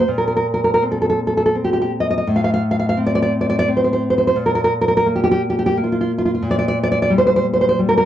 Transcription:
0.08 2.22 A#2 medium
0.18 0.26 A#4 medium
0.28 0.35 A#4 medium
0.36 0.46 A#4 medium
0.54 0.63 A#4 medium
0.64 0.73 A#4 medium
0.74 0.83 A#4 medium
0.82 1.54 C4 medium
0.92 1.00 A4 medium
1.02 1.08 A4 medium
1.09 1.19 A4 medium
1.27 1.36 A4 medium
1.37 1.44 A4 medium
1.46 1.55 A4 medium
1.55 2.23 C4 soft
1.64 1.72 G4 medium
1.73 1.80 G4 medium
1.82 1.91 G4 medium
2.00 2.09 D#5 medium
2.10 2.17 D#5 medium
2.18 2.27 D#5 medium
2.27 4.34 A2 medium
2.36 2.43 F5 medium
2.44 2.52 F5 medium
2.54 2.62 F5 medium
2.71 2.78 F5 medium
2.79 2.88 F5 medium
2.89 2.98 F5 medium
2.97 3.67 C4 medium
3.06 3.14 D5 medium
3.15 3.21 D5 medium
3.22 3.32 D5 medium
3.41 3.48 D5 medium
3.50 3.58 D5 medium
3.59 3.68 D5 loud
3.68 4.34 C4 medium
3.77 3.83 C5 medium
3.84 3.92 C5 medium
3.93 4.02 C5 medium
4.10 4.17 C5 medium
4.18 4.26 C5 medium
4.27 4.37 C5 medium
4.36 6.40 A#2 medium
4.46 4.54 A#4 medium
4.55 4.63 A#4 medium
4.64 4.73 A#4 medium
4.81 4.87 A#4 medium
4.88 4.96 A#4 medium
4.97 5.06 A#4 medium
5.06 5.76 A#3 medium
5.16 5.22 G4 medium
5.24 5.30 G4 medium
5.31 5.41 G4 medium
5.50 5.58 G4 medium
5.59 5.65 G4 medium
5.66 5.76 G4 medium
5.77 6.41 A#3 medium
5.84 5.91 F4 medium
5.92 6.00 F4 medium
6.01 6.10 F4 medium
6.18 6.24 F4 medium
6.25 6.33 F4 medium
6.35 6.44 F4 medium
6.42 8.05 A#2 medium
6.51 6.57 D5 medium
6.59 6.67 D5 medium
6.68 6.78 D5 medium
6.83 6.90 D5 medium
6.92 7.01 D5 medium
7.02 7.11 D5 medium
7.10 7.78 G3 medium
7.18 7.25 C5 medium
7.27 7.35 C5 medium
7.36 7.46 C5 medium
7.53 7.60 C5 medium
7.61 7.68 C5 medium
7.69 7.80 C5 medium
7.79 8.05 G3 medium
7.89 7.96 A#4 medium
7.97 8.05 A#4 medium

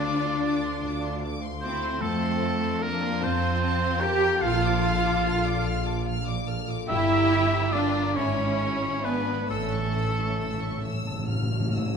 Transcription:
0.00 0.68 D2 medium
0.00 2.04 D3 medium
0.00 3.69 A3 soft
0.00 2.20 C4 medium
0.00 1.19 D4 medium
0.00 1.18 F4 medium
0.00 0.40 A4 medium
0.00 1.19 D5 loud
0.00 0.20 A5 soft
0.05 0.23 D6 medium
0.20 1.79 F4 medium
0.25 0.43 C6 medium
0.41 1.59 A4 medium
0.46 0.63 D6 medium
0.61 1.39 C5 medium
0.61 0.83 C6 medium
0.82 1.88 D2 medium
0.82 1.21 F5 medium
0.87 1.05 D6 medium
1.01 3.20 A5 medium
1.01 1.23 C6 medium
1.22 3.00 F5 medium
1.22 1.41 D6 medium
1.40 2.80 C5 medium
1.40 1.63 C6 medium
1.60 2.00 C4 medium
1.60 2.00 E4 medium
1.60 2.60 A4 medium
1.60 2.03 C5 medium
1.65 1.83 D6 medium
1.81 2.39 F4 medium
1.81 2.02 C6 medium
2.00 3.07 F2 medium
2.00 4.63 F3 medium
2.00 2.82 A3 medium
2.00 2.81 C4 medium
2.00 2.84 A4 loud
2.00 2.20 A5 medium
2.21 4.45 C4 medium
2.21 2.42 C6 medium
2.40 5.04 F4 medium
2.40 2.63 A5 medium
2.61 4.21 A4 medium
2.65 2.84 C6 medium
2.81 3.22 A#3 medium
2.81 3.21 D4 medium
2.81 3.25 A#4 loud
2.81 4.00 C5 medium
2.81 3.02 A5 medium
3.01 3.81 F5 medium
3.01 3.23 C6 medium
3.20 4.27 F2 medium
3.20 4.02 C4 medium
3.20 4.01 F4 medium
3.20 4.02 C5 medium
3.20 3.61 A5 medium
3.20 3.42 A5 medium
3.43 4.46 C6 medium
3.43 3.62 C6 medium
3.62 5.85 A5 medium
3.62 3.80 A5 medium
3.82 5.63 F5 medium
3.82 4.02 C6 medium
3.99 4.42 G4 loud
3.99 4.41 A#4 loud
3.99 4.45 C5 medium
3.99 4.43 G5 loud
3.99 4.22 A5 medium
4.22 5.23 A4 medium
4.22 4.43 C6 medium
4.41 5.51 A#1 loud
4.41 6.93 A#2 medium
4.41 6.07 F4 medium
4.41 6.04 F4 medium
4.41 6.03 A4 medium
4.41 6.06 F5 loud
4.41 4.62 F6 medium
4.64 6.93 F3 medium
4.64 4.84 D6 medium
4.84 6.93 D4 medium
4.84 5.05 F6 medium
5.05 6.67 F4 medium
5.05 5.25 D6 medium
5.25 6.46 A4 medium
5.25 5.44 F6 medium
5.45 6.26 D5 medium
5.45 5.66 D6 medium
5.64 6.74 A#1 loud
5.64 6.05 F5 medium
5.64 5.86 F6 medium
5.86 6.93 A5 medium
5.86 6.07 D6 medium
6.06 6.92 F5 medium
6.06 6.26 F6 medium
6.27 6.92 D5 medium
6.27 6.48 D6 medium
6.47 6.92 A4 medium
6.47 6.68 F6 medium
6.68 6.92 F4 medium
6.68 6.89 D6 medium
6.88 8.00 G1 medium
6.88 8.19 G2 medium
6.88 7.68 E4 medium
6.88 7.69 E4 loud
6.88 7.68 G4 loud
6.88 7.74 E5 loud
6.88 7.09 G5 medium
7.09 8.19 G3 medium
7.09 7.31 A#5 medium
7.31 7.52 G5 medium
7.51 8.20 G4 medium
7.51 7.72 A#5 medium
7.71 8.16 D4 medium
7.71 8.15 F4 loud
7.71 8.19 A#4 medium
7.71 8.18 D5 loud
7.71 7.92 G5 medium
7.94 8.16 A#5 medium
8.15 9.34 G#1 medium
8.15 9.53 G#2 medium
8.15 9.04 C#4 medium
8.15 9.02 E4 medium
8.15 9.06 C#5 medium
8.15 8.36 G#5 medium
8.36 9.54 G#3 medium
8.36 8.59 B5 medium
8.58 9.53 D4 medium
8.58 8.81 G#5 medium
8.81 9.53 F4 medium
8.81 9.04 B5 medium
9.03 9.50 B3 medium
9.03 9.49 D4 medium
9.03 9.53 B4 medium
9.03 9.50 B4 medium
9.03 9.25 G#5 medium
9.26 9.53 D5 medium
9.26 9.50 B5 medium
9.48 10.68 A1 medium
9.48 9.56 A2 soft
9.48 11.97 A2 medium
9.48 10.81 A3 medium
9.48 10.82 A3 medium
9.48 10.81 C#4 medium
9.48 10.82 A4 medium
9.48 9.71 E6 medium
9.57 9.64 A2 soft
9.66 9.72 A2 soft
9.73 9.80 A2 soft
9.73 11.97 E3 soft
9.73 9.95 C#6 medium
9.81 9.88 A2 soft
9.90 9.95 A2 soft
9.95 10.03 A2 soft
9.95 11.97 C#4 soft
9.95 10.18 E6 medium
10.04 10.11 A2 soft
10.12 10.19 A2 soft
10.18 10.28 A2 soft
10.18 11.97 E4 medium
10.18 10.40 C#6 soft
10.30 10.37 A2 soft
10.38 10.45 A2 soft
10.38 11.74 A4 soft
10.38 10.61 E6 soft
10.46 10.52 A2 medium
10.53 10.61 A2 medium
10.61 10.69 A2 medium
10.61 11.51 C#5 medium
10.61 10.84 C#6 soft
10.70 10.77 A2 medium
10.78 10.84 A2 medium
10.84 11.97 A1 medium
10.84 10.92 A2 medium
10.84 11.28 E5 medium
10.84 11.26 E6 medium
10.93 11.02 A2 medium
11.03 11.10 A2 medium
11.03 11.97 A5 medium
11.11 11.18 A2 medium
11.19 11.27 A2 medium
11.28 11.34 A2 medium
11.28 11.97 E5 soft
11.28 11.76 F6 medium
11.35 11.41 A2 medium
11.43 11.51 A2 medium
11.52 11.59 A2 medium
11.52 11.97 C#5 soft
11.60 11.67 A2 medium
11.69 11.76 A2 medium
11.75 11.85 A2 medium
11.75 11.97 A4 soft
11.75 11.97 E6 medium
11.86 11.93 A2 medium

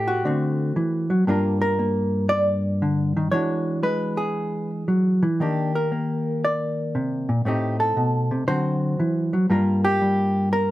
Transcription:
0.00 0.23 A2 medium
0.00 0.23 A3 medium
0.00 0.23 C4 soft
0.00 0.24 G4 medium
0.08 1.26 F#4 medium
0.25 0.75 D3 medium
0.25 1.10 A3 soft
0.25 1.26 C4 soft
0.76 1.10 E3 medium
1.10 1.27 F#3 medium
1.27 3.32 G2 medium
1.27 1.78 A#3 soft
1.27 3.33 D4 soft
1.27 3.32 F4 soft
1.27 1.60 A#4 soft
1.62 2.29 A#4 medium
1.79 3.31 A#3 medium
2.29 3.31 D5 loud
2.82 3.16 D3 medium
3.17 3.32 D#3 medium
3.32 5.21 E3 medium
3.32 3.82 G#3 soft
3.32 5.39 D4 soft
3.32 4.17 F#4 soft
3.32 3.83 C#5 medium
3.83 4.87 G#3 medium
3.83 4.70 B4 medium
4.17 5.40 G#4 medium
4.88 5.23 F#3 medium
5.23 5.40 E3 medium
5.40 7.29 D#3 medium
5.40 5.90 A#3 soft
5.40 5.75 D4 soft
5.40 6.44 G4 soft
5.75 6.96 A#4 medium
5.92 7.46 A#3 soft
6.45 7.46 D5 medium
6.95 7.29 C3 medium
7.29 7.45 A#2 medium
7.45 7.96 A2 medium
7.45 8.46 A3 soft
7.45 8.46 C4 soft
7.45 8.47 D#4 soft
7.45 7.80 G4 soft
7.80 8.47 A4 medium
7.97 8.31 B2 medium
8.31 8.47 C3 medium
8.48 8.99 D3 medium
8.48 9.32 F#3 soft
8.48 9.48 C4 soft
8.48 9.49 F#4 soft
8.48 9.50 C5 medium
9.00 9.33 E3 medium
9.33 9.50 F#3 medium
9.50 10.71 G2 medium
9.50 10.00 G3 soft
9.50 10.71 A#3 soft
9.50 10.71 F4 soft
9.50 9.84 A#4 soft
9.85 10.52 G4 loud
10.02 10.71 G3 medium
10.53 10.69 A#4 loud

